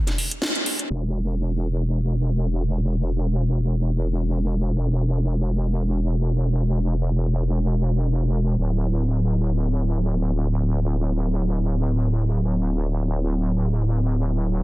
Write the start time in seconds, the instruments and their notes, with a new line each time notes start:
0.07 snare, closed hi-hat
0.18 open hi-hat
0.31 closed hi-hat
0.42 snare
0.55 closed hi-hat
0.66 open hi-hat
0.79 closed hi-hat
0.90 wobble bass E1
1.27 closed hi-hat
1.51 closed hi-hat
1.75 closed hi-hat
1.99 closed hi-hat
2.23 closed hi-hat
2.71 closed hi-hat
3.19 closed hi-hat
3.43 closed hi-hat
3.67 closed hi-hat
3.91 closed hi-hat
4.15 closed hi-hat
4.63 closed hi-hat
5.11 closed hi-hat
5.35 closed hi-hat
5.59 closed hi-hat
5.83 closed hi-hat
6.07 closed hi-hat
6.55 closed hi-hat
7.03 closed hi-hat
7.27 closed hi-hat
7.51 closed hi-hat
7.76 closed hi-hat
7.99 closed hi-hat
8.24 closed hi-hat
8.48 closed hi-hat
8.58 wobble bass D1
8.95 closed hi-hat
9.20 closed hi-hat
9.44 closed hi-hat
9.68 closed hi-hat
9.92 closed hi-hat
10.39 closed hi-hat
10.88 closed hi-hat
11.11 closed hi-hat
11.35 closed hi-hat
11.59 closed hi-hat
11.83 closed hi-hat
12.31 closed hi-hat
12.79 closed hi-hat
13.03 closed hi-hat
13.27 closed hi-hat
13.51 closed hi-hat
13.75 closed hi-hat
14.23 closed hi-hat
14.47 closed hi-hat